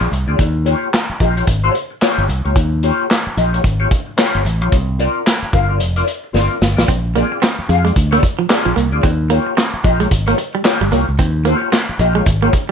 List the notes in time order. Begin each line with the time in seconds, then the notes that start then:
0.01 A#1
0.11 C2, muted clean electric guitar stroke, closed hi-hat
0.27 D2 C4 F4 G#4 D5
0.39 D#2, kick, closed hi-hat
0.65 A#3 F4 G4 C#5, closed hi-hat
0.92 muted clean electric guitar stroke, snare, clap, closed hi-hat
1.09 muted clean electric guitar stroke, muted fingered electric bass stroke
1.20 A#1 A#3 F4 G4 D#5, kick, closed hi-hat
1.37 A#3 F4 G4 C#5, closed hi-hat
1.47 G#1, muted clean electric guitar stroke, kick, closed hi-hat
1.64 A#3 F4 G4 C#5
1.74 muted clean electric guitar stroke, closed hi-hat
1.90 muted clean electric guitar stroke
2.01 A#3 F4 G4 C#5, snare, clap, closed hi-hat
2.18 G1
2.28 C2, muted clean electric guitar stroke, closed hi-hat
2.45 C#2 A#3 F4 G4 C#5
2.56 D#2, kick, closed hi-hat
2.83 A#3 F4 G4 C#5, closed hi-hat
3.11 snare, clap, closed hi-hat
3.26 muted clean electric guitar stroke, muted fingered electric bass stroke
3.37 A#1 A#3 F4 G4 D#5, closed hi-hat
3.53 A#3 F4 G4 C#5, closed hi-hat
3.64 G#1, muted clean electric guitar stroke, kick, closed hi-hat
3.80 A#3 F4 G4 C#5
3.91 muted clean electric guitar stroke, kick, closed hi-hat
4.07 muted clean electric guitar stroke
4.17 A#3 F4 G4 C#5, snare, clap, closed hi-hat
4.35 G1
4.45 A1, muted clean electric guitar stroke, closed hi-hat
4.61 A#1 A#3 F4 G4 C#5
4.72 C2, kick, closed hi-hat
4.99 C4 F4 A#4 D5, closed hi-hat
5.26 muted clean electric guitar stroke, snare, clap, closed hi-hat
5.42 muted clean electric guitar stroke, muted fingered electric bass stroke
5.53 G1 C4 F4 A#4 F5, kick, closed hi-hat
5.68 C4 F4 A#4 D5
5.80 F1, muted clean electric guitar stroke, closed hi-hat
5.96 C4 F4 A#4 D5, closed hi-hat
6.07 muted clean electric guitar stroke, closed hi-hat
6.23 muted clean electric guitar stroke
6.33 G1 C4 F4 A#4 D5, snare
6.61 G1, muted clean electric guitar stroke, snare
6.76 A1 C4 F4 A#4 D5, snare
6.88 A#1 C4, kick, closed hi-hat
7.15 A#3 C4 F4 G#4 D5, closed hi-hat
7.32 muted clean electric guitar stroke
7.42 C4, muted clean electric guitar stroke, snare, clap, closed hi-hat
7.58 muted clean electric guitar stroke, muted fingered electric bass stroke
7.68 F2 C4 F4 G#4 F5, muted clean electric guitar stroke, closed hi-hat
7.85 G#3 C4 F4 G#4 D5, closed hi-hat
7.95 D2, muted clean electric guitar stroke, kick, closed hi-hat
8.11 A#3 C4 F4 G#4 D5, closed hi-hat
8.22 muted clean electric guitar stroke, kick, closed hi-hat
8.38 F3, muted clean electric guitar stroke
8.49 C4 F4 G#4 D5, muted clean electric guitar stroke, snare, clap, closed hi-hat
8.65 A#1 F3
8.76 C2 A#3, closed hi-hat
8.92 D2 C4 F4 G#4 D5
9.03 D#2 C4, kick, closed hi-hat
9.30 A#3 F4 G4 C#5, closed hi-hat
9.46 muted clean electric guitar stroke
9.57 C4, muted clean electric guitar stroke, snare, clap, closed hi-hat
9.73 muted clean electric guitar stroke, muted fingered electric bass stroke
9.84 A#1 A#3 F4 G4 D#5, muted clean electric guitar stroke, kick, closed hi-hat
10.00 G#3 A#3 F4 G4 C#5, closed hi-hat
10.10 G#1, muted clean electric guitar stroke, kick, closed hi-hat
10.27 A#3 F4 G4 C#5, closed hi-hat
10.37 muted clean electric guitar stroke, closed hi-hat
10.54 G3, muted clean electric guitar stroke
10.64 A#3 F4 G4 C#5, muted clean electric guitar stroke, snare, clap, closed hi-hat
10.81 G1 G3, muted clean electric guitar stroke
10.91 C2 A#3 F4 G4 C#5, closed hi-hat
11.07 C#2, muted clean electric guitar stroke
11.19 D#2 C4, kick, closed hi-hat
11.45 A#3 F4 G4 C#5, closed hi-hat
11.62 muted clean electric guitar stroke
11.72 C4, muted clean electric guitar stroke, snare, clap, closed hi-hat
11.88 muted clean electric guitar stroke, muted fingered electric bass stroke
11.99 A#1 A#3 F4 G4 D#5, muted clean electric guitar stroke, closed hi-hat
12.15 G#3 A#3 F4 G4 C#5
12.26 G#1, muted clean electric guitar stroke, kick, closed hi-hat
12.42 A#3 F4 G4 C#5
12.53 muted clean electric guitar stroke, kick, closed hi-hat